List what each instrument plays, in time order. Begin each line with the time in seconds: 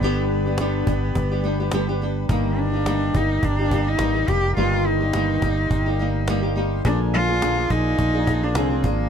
Already playing: harmonium G4 B4 D5 B5
0.01 fretless electric bass G1, nylon-string guitar G2 D3 G3 B3 D4 G4, cello B3, cajon slap
0.17 cajon slap
0.30 cello B3, cajon slap
0.46 nylon-string guitar G3 B3 D4 G4, cajon slap
0.58 nylon-string guitar G2 D3 G3 B3 D4 G4, cajon slap
0.87 fretless electric bass G1, nylon-string guitar G3 B3 D4 G4, cajon bass
1.03 cajon slap
1.15 fretless electric bass G1, cajon bass
1.31 nylon-string guitar G3 B3 D4 G4, cajon slap
1.44 nylon-string guitar G3 B3 D4 G4
1.60 nylon-string guitar G3 B3 D4 G4, cajon slap
1.71 nylon-string guitar G2 D3 G3 B3 D4 G4, cajon slap
1.88 nylon-string guitar G3 B3 D4 G4, cajon slap
2.02 nylon-string guitar G3 B3 D4 G4
2.16 cajon slap
2.28 fretless electric bass G1, nylon-string guitar G2 D#3 G3 A#3 D#4 G4, cello A#3, harmonium A#4 G5 A#5, cajon bass
2.59 cello D4
2.73 nylon-string guitar G3 A#3 D#4 G4
2.86 nylon-string guitar G2 D#3 G3 A#3 D#4 G4, cajon slap
3.14 fretless electric bass G1, nylon-string guitar G3 A#3 D#4 G4, cello D#4, cajon bass
3.43 fretless electric bass G1, cello D4, cajon bass
3.59 nylon-string guitar G3 A#3 D#4 G4
3.71 nylon-string guitar G3 A#3 D#4 G4, cajon bass
3.88 cello D#4
3.99 fretless electric bass G#1, nylon-string guitar G2 D#3 G3 A#3 D#4 G4, cajon slap
4.15 nylon-string guitar G3 A#3 D#4 G4
4.27 fretless electric bass F1, nylon-string guitar G3 A#3 D#4 G4, cello G4, cajon bass
4.56 fretless electric bass G1, nylon-string guitar G2 D#3 G3 A#3 D#4 G4, cello F4, harmonium C6
4.87 cello D#4
5.01 nylon-string guitar G3 A#3 D#4 G4
5.13 nylon-string guitar G2 D#3 G3 A#3 D#4 G4, cajon slap
5.42 fretless electric bass G1, nylon-string guitar G3 A#3 D#4 G4, cajon bass
5.70 fretless electric bass G1, cajon bass
5.86 nylon-string guitar G3 A#3 D#4 G4, cajon slap
5.99 nylon-string guitar G3 A#3 D#4 G4, cajon slap
6.16 cajon slap
6.28 nylon-string guitar G2 D#3 G3 A#3 D#4 G4, cajon slap
6.43 nylon-string guitar G3 A#3 D#4 G4, cajon slap
6.56 nylon-string guitar G3 A#3 D#4 G4
6.73 cajon slap
6.85 fretless electric bass A#1, nylon-string guitar A#2 D3 F3 A#3 D4 G#4, cello D4, harmonium F4 A#4 D5 G#5, cajon bass
7.02 cajon slap
7.14 cello F4
7.28 nylon-string guitar F3 A#3 D4 G#4
7.41 nylon-string guitar A#2 D3 F3 A#3 D4 G#4, cajon slap
7.57 nylon-string guitar F3 A#3 D4 G#4
7.69 fretless electric bass A#1, nylon-string guitar F3 A#3 G#4, cello D#4, cajon bass
7.99 fretless electric bass A#1, cajon bass
8.14 nylon-string guitar F3 A#3 D4 G#4
8.27 nylon-string guitar F3 A#3 D4 G#4, cajon bass
8.42 nylon-string guitar F3 A#3 D4 G#4, cello D4
8.55 fretless electric bass C2, nylon-string guitar A#2 D3 F3 A#3 D4 G#4, cello C4, cajon slap
8.70 nylon-string guitar F3 A#3 D4 G#4
8.83 fretless electric bass G#1, nylon-string guitar F3 A#3 D4 G#4, cello A#3, cajon bass